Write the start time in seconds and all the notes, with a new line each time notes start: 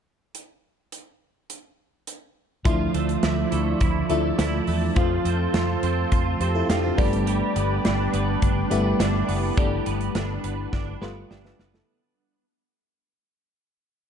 0.35 closed hi-hat
0.92 closed hi-hat
1.50 closed hi-hat
2.07 closed hi-hat
2.65 D2 F3 A3 D4 E4 D5 E5 A5, kick, closed hi-hat
2.94 D2 A3, closed hi-hat
3.09 closed hi-hat
3.23 D2 E4, snare, closed hi-hat
3.52 D2 A3, closed hi-hat
3.80 D2 E4, kick, closed hi-hat
4.09 D2 F3 A3 D4 E4, closed hi-hat
4.38 D2 E4, snare, closed hi-hat
4.67 E2 A3, open hi-hat
4.96 F2 F3 A3 C4 F4 A4 C5, kick, closed hi-hat
5.25 F2 C4, closed hi-hat
5.54 F2 F4, snare, closed hi-hat
5.83 F2 C4, closed hi-hat
6.12 F2 F4, kick, closed hi-hat
6.40 F2 C4 G4 C5, closed hi-hat
6.55 E4 A4
6.69 F2 D4 F4 G4, snare, closed hi-hat
6.84 C4 F4
6.97 G1 G3 A3 B3 D4 G4 B4 D5, kick, open hi-hat
7.13 closed hi-hat
7.27 G3, closed hi-hat
7.56 G1 B3, closed hi-hat
7.85 G1 D4, snare, closed hi-hat
8.13 G1 B3, closed hi-hat
8.42 G1 D4, kick, closed hi-hat
8.70 G1 G3 A3 B3 E4, closed hi-hat
8.99 G1 D4, snare, closed hi-hat
9.28 F#1 B3, open hi-hat
9.57 G1 G3 A3 B3 D4, kick, closed hi-hat
9.86 G1 B3, closed hi-hat
10.01 closed hi-hat
10.15 G1 D4, snare, closed hi-hat
10.44 G1 B3, closed hi-hat
10.73 G1 D4, kick, snare
11.01 G1 G3 A3 B3 F4, snare
11.30 G1 D4 G4, snare
11.45 F4 B4, snare
11.59 F#1 B3, snare
11.74 E4 A4, snare